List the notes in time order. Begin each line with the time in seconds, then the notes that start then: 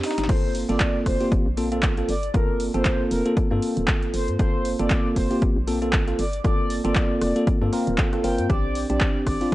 Already playing: C4 D4 G4
0.03 D#4, snare, open hi-hat
0.11 snare
0.18 G1, snare, closed hi-hat
0.24 snare
0.29 G1 A#3 C4 F4 A4 C5, kick, cross-stick, closed hi-hat, crash
0.55 open hi-hat
0.69 G1 A#3 C4 F4 A4 D5, closed hi-hat
0.80 kick, clap, closed hi-hat
1.06 F1 C5, kick, cross-stick, open hi-hat
1.20 A#3 C4 F4 G4, open hi-hat
1.32 G1, kick, closed hi-hat
1.46 A#1
1.57 A#3 C4 F4 A4, open hi-hat
1.72 A#3 C4 F4 A4, closed hi-hat
1.83 kick, clap, closed hi-hat
1.97 A#3 C4 F4 A4, closed hi-hat
2.09 G1 D5, open hi-hat
2.23 closed hi-hat
2.34 G1 A#3 C4 F4 A4 A#4, kick, cross-stick, closed hi-hat
2.60 open hi-hat
2.74 G1 A#3 C4 F4 A4 C5, closed hi-hat
2.85 kick, clap, closed hi-hat
3.11 F1 A#4, open hi-hat
3.25 A#3 C4 F4 A4, closed hi-hat
3.37 kick, closed hi-hat
3.51 G2 A#3 C4 F4 A4
3.62 open hi-hat
3.77 D1, closed hi-hat
3.88 kick, clap, closed hi-hat
4.03 closed hi-hat
4.14 G1 C5, open hi-hat
4.28 G2, closed hi-hat
4.39 G1 A#3 C4 F4 A4 C5, kick, cross-stick, closed hi-hat
4.65 open hi-hat
4.79 G1 A#3 C4 F4 A4 D5, closed hi-hat
4.90 kick, clap, closed hi-hat
5.16 F1 C5, kick, open hi-hat
5.30 A#3 C4 F4 G4, open hi-hat
5.42 G1, kick, closed hi-hat
5.57 A#1
5.67 A#3 C4 F4 A4, open hi-hat
5.82 A#3 C4 F4 A4, closed hi-hat
5.93 kick, clap, closed hi-hat
6.07 A#3 C4 F4 A4, closed hi-hat
6.19 G1 D5, open hi-hat
6.33 closed hi-hat
6.44 G1 A#3 C4 F4 A4 D5, kick, cross-stick, closed hi-hat
6.70 open hi-hat
6.84 G1 A#3 C4 F4 A4 D5, closed hi-hat
6.95 kick, clap, closed hi-hat
7.21 F1 D5, cross-stick, open hi-hat
7.36 A#3 C4 F4 A4, closed hi-hat
7.47 kick, closed hi-hat
7.61 G2 A#3 C4 F4 A4
7.72 A#3 C4 F4 A#4, open hi-hat
7.87 D1, closed hi-hat
7.98 C4 A4, kick, clap, closed hi-hat
8.13 A#3 C4 F4 A4, cross-stick, closed hi-hat
8.24 G1 A#3 C4 F4 A#4 G5, open hi-hat
8.38 G2, closed hi-hat
8.49 A#1 C4 D4 G4 D5, kick, cross-stick, closed hi-hat
8.75 open hi-hat
8.89 A#1 C4 D4 G4 D5, closed hi-hat
9.00 kick, clap, closed hi-hat
9.27 G1 D5, kick, cross-stick, open hi-hat
9.41 C4 D4 F4, open hi-hat